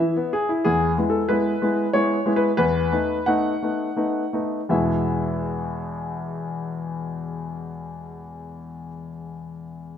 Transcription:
0.00 0.15 E3 medium
0.00 0.30 E5 medium
0.17 0.33 B3 soft
0.33 0.49 G#4 medium
0.49 0.64 E4 medium
0.65 0.96 E2 medium
0.65 0.90 G#4 medium
0.98 1.20 G#3 soft
0.98 1.21 B3 soft
0.98 1.21 E4 soft
1.10 1.30 A4 medium
1.29 1.52 G#3 soft
1.29 1.53 B3 soft
1.29 1.53 E4 soft
1.29 1.89 B4 medium
1.62 1.84 G#3 soft
1.62 1.85 B3 soft
1.62 1.85 E4 soft
1.93 2.17 G#3 soft
1.93 2.17 B3 soft
1.93 2.17 E4 soft
1.93 2.32 C#5 medium
2.26 2.49 G#3 soft
2.26 2.49 B3 soft
2.26 2.49 E4 medium
2.36 2.49 B4 medium
2.57 2.91 E2 medium
2.57 3.26 B4 medium
2.92 3.17 A3 soft
2.92 3.17 B3 soft
2.92 3.17 D#4 soft
3.26 3.52 A3 soft
3.26 3.52 B3 soft
3.26 3.52 D#4 soft
3.26 4.33 F#5 medium
3.63 3.87 A3 soft
3.63 3.88 B3 soft
3.63 3.88 D#4 soft
3.97 4.23 A3 soft
3.97 4.23 B3 soft
3.97 4.23 D#4 soft
4.33 4.59 A3 soft
4.33 4.60 B3 soft
4.33 4.60 D#4 soft
4.69 8.86 E2 soft
4.69 8.86 B2 soft
4.69 8.87 G#3 soft
4.69 8.87 B3 soft
4.69 8.87 E4 soft
4.69 8.87 G#4 soft
4.69 8.87 E5 soft

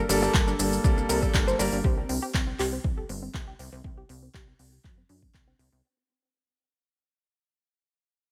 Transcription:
0.09 0.29 G1 medium
0.09 0.21 G3 medium
0.09 0.21 A#3 medium
0.09 0.17 D4 medium
0.09 0.21 A4 loud
0.09 open hi-hat loud
0.09 maracas medium
0.22 0.33 G3 medium
0.22 0.33 A#3 medium
0.22 0.29 D4 medium
0.22 0.33 A4 loud
0.22 maracas soft
0.34 0.54 G1 medium
0.34 0.50 G3 medium
0.34 0.50 A#3 medium
0.34 0.50 A4 medium
0.34 0.42 A#4 loud
0.34 kick loud
0.34 clap loud
0.34 maracas soft
0.47 0.54 D4 medium
0.47 maracas soft
0.59 0.79 G1 medium
0.59 0.81 G3 medium
0.59 0.81 A#3 medium
0.59 0.67 D4 medium
0.59 0.81 A4 medium
0.59 open hi-hat loud
0.59 maracas medium
0.73 maracas soft
0.84 1.04 C2 medium
0.84 1.06 G3 medium
0.84 1.06 A#3 medium
0.84 0.92 D4 medium
0.84 1.06 A4 loud
0.84 kick loud
0.84 maracas medium
0.97 1.04 D4 medium
0.97 maracas soft
1.09 1.29 C2 medium
1.09 1.21 G3 medium
1.09 1.20 A#3 medium
1.09 1.20 A4 medium
1.09 1.17 A#4 medium
1.09 open hi-hat loud
1.09 maracas medium
1.22 1.31 G3 medium
1.22 1.31 A#3 medium
1.22 1.29 D4 medium
1.22 1.31 A4 medium
1.22 kick medium
1.22 maracas soft
1.34 1.54 G1 medium
1.34 1.56 G3 medium
1.34 1.56 A#3 medium
1.34 1.42 D4 medium
1.34 1.56 A4 medium
1.34 kick loud
1.34 clap loud
1.34 maracas medium
1.47 1.54 C5 loud
1.47 maracas soft
1.59 1.69 G1 loud
1.59 1.75 G3 medium
1.59 1.75 A#3 medium
1.59 1.67 D4 medium
1.59 1.75 A#4 loud
1.59 open hi-hat loud
1.59 maracas medium
1.72 1.82 G1 medium
1.72 1.79 D4 medium
1.72 maracas soft
1.84 2.04 C2 loud
1.84 1.92 G4 medium
1.84 kick loud
1.98 2.04 C4 medium
2.09 2.19 C2 medium
2.09 2.17 C4 medium
2.09 open hi-hat loud
2.22 2.29 G4 medium
2.34 2.54 C2 medium
2.34 2.42 C4 medium
2.34 kick loud
2.34 clap loud
2.47 2.54 C4 medium
2.59 2.79 C2 loud
2.59 2.67 G4 medium
2.59 clap medium
2.59 open hi-hat loud
2.72 2.79 C4 medium
2.84 3.04 C2 medium
2.84 2.92 C4 medium
2.84 kick loud
2.97 3.04 A4 medium
3.09 3.29 G1 medium
3.09 3.17 C4 medium
3.09 open hi-hat loud
3.22 3.29 C4 medium
3.34 3.54 C2 medium
3.34 3.42 C4 medium
3.34 kick loud
3.34 clap loud
3.47 3.54 G4 medium
3.59 3.69 C2 medium
3.59 3.67 C4 medium
3.59 open hi-hat loud
3.72 3.82 C2 medium
3.72 3.79 C4 medium
3.84 3.92 C4 medium
3.84 kick loud
3.97 4.04 G4 medium
4.09 4.29 C2 medium
4.09 4.17 C4 medium
4.09 open hi-hat loud
4.23 4.29 C4 medium
4.34 4.42 G4 loud
4.34 kick loud
4.34 clap loud
4.48 4.54 C4 medium
4.59 4.79 C2 medium
4.59 4.67 C4 medium
4.59 open hi-hat loud
4.84 5.04 F#2 medium
4.84 4.92 C4 medium
4.84 kick loud
4.84 clap medium
4.98 5.04 C4 medium
5.09 5.29 F#2 medium
5.09 5.17 D4 medium
5.09 open hi-hat loud
5.22 5.29 C4 medium
5.22 kick medium
5.34 5.54 C2 medium
5.34 5.42 C4 medium
5.34 kick loud
5.34 clap loud
5.47 5.54 C4 medium
5.59 5.69 C2 medium
5.59 5.67 C4 medium
5.59 open hi-hat loud
5.72 5.82 C2 medium
5.72 5.79 C4 medium

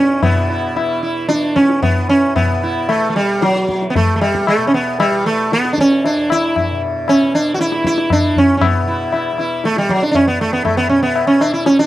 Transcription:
0.00 0.25 B2 medium
0.00 0.79 E3 medium
0.00 0.23 C#4 medium
0.09 1.87 E2 medium
0.22 2.42 B2 medium
0.22 0.99 B3 medium
0.22 0.48 E4 soft
0.22 tabla na medium
0.22 tabla ge medium
0.50 0.75 E4 soft
0.76 1.34 E3 medium
0.76 1.01 E4 soft
0.76 tabla na medium
1.03 1.28 E4 soft
1.29 1.57 D4 medium
1.29 tabla te medium
1.34 2.96 E3 medium
1.43 tabla te medium
1.56 1.82 C#4 medium
1.56 tabla ke medium
1.70 tabla te medium
1.82 2.07 B3 medium
1.82 tabla tin medium
1.82 tabla ge medium
1.87 4.03 E2 medium
2.09 2.34 C#4 medium
2.36 2.89 B3 medium
2.36 tabla na medium
2.36 tabla ge medium
2.42 4.57 B2 medium
2.63 2.88 E4 soft
2.89 3.09 A3 medium
2.89 tabla na medium
2.96 3.50 E3 medium
3.10 3.16 A3 soft
3.16 3.43 G3 medium
3.42 3.85 F#3 medium
3.42 tabla te medium
3.50 5.10 E3 medium
3.56 tabla te soft
3.69 tabla ke medium
3.82 tabla te medium
3.90 3.95 B3 medium
3.95 4.15 A3 medium
3.95 tabla tin medium
3.95 tabla ge medium
4.03 6.16 E2 medium
4.16 4.21 A3 medium
4.21 4.48 G3 medium
4.21 tabla na medium
4.35 tabla ke soft
4.47 4.67 A3 medium
4.47 tabla na medium
4.57 6.70 B2 medium
4.67 4.73 C#4 medium
4.74 4.99 B3 medium
5.00 5.26 G3 medium
5.00 tabla na medium
5.10 5.64 E3 medium
5.26 5.53 A3 medium
5.52 5.71 B3 medium
5.52 tabla te medium
5.64 7.24 E3 medium
5.64 tabla te medium
5.73 5.78 D4 medium
5.78 6.05 C#4 loud
5.78 tabla ke medium
5.91 tabla te soft
6.04 6.31 D4 medium
6.04 tabla tin medium
6.17 8.28 E2 medium
6.30 6.57 E4 medium
6.30 tabla na medium
6.56 6.81 E4 soft
6.56 tabla na medium
6.56 tabla ge medium
6.70 8.80 B2 medium
7.08 7.34 C#4 medium
7.08 tabla na medium
7.24 7.75 E3 medium
7.35 7.53 D4 medium
7.54 7.60 F#4 medium
7.59 7.85 E4 loud
7.59 tabla te medium
7.72 9.32 E3 medium
7.72 tabla te medium
7.84 8.12 E4 loud
7.84 tabla ke medium
7.98 tabla te medium
8.10 8.38 D4 medium
8.10 tabla na medium
8.10 tabla ge medium
8.28 10.36 E2 medium
8.36 8.56 C#4 medium
8.36 tabla ge medium
8.57 8.62 C#4 medium
8.61 9.35 B3 medium
8.61 tabla na medium
8.61 tabla ge medium
8.81 10.89 B2 medium
8.88 9.11 E4 soft
9.12 9.37 E4 soft
9.12 tabla na medium
9.32 9.85 E3 medium
9.38 9.63 E4 soft
9.38 tabla na medium
9.64 9.78 A3 medium
9.64 tabla te medium
9.76 9.91 G3 medium
9.76 tabla te medium
9.85 11.40 E3 medium
9.89 10.02 F#3 medium
9.89 tabla ke medium
10.02 10.10 D4 medium
10.02 tabla te medium
10.11 10.27 C#4 medium
10.11 10.15 D4 medium
10.11 tabla tin medium
10.11 tabla ge medium
10.28 10.41 B3 medium
10.36 11.86 E2 medium
10.41 10.52 A3 medium
10.53 10.64 B3 medium
10.65 10.77 A3 medium
10.65 tabla na medium
10.65 tabla ge medium
10.77 10.89 B3 medium
10.89 11.86 B2 medium
10.89 11.02 C#4 medium
11.03 11.27 B3 medium
11.16 tabla na medium
11.27 11.40 C#4 medium
11.40 11.86 E3 medium
11.40 11.53 D4 medium
11.40 tabla na medium
11.54 11.66 E4 medium
11.66 11.79 C#4 medium
11.66 tabla te medium
11.79 11.86 D4 medium
11.79 tabla te medium

